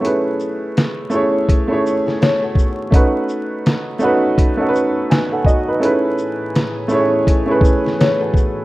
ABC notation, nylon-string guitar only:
X:1
M:4/4
L:1/16
Q:"Swing 16ths" 1/4=83
K:Alyd
V:1 name="Nylon-string guitar"
z8 z3 [EG] [Ac] [FA]3 | z16 | z8 z3 [EG] [Ac] [FA]3 |]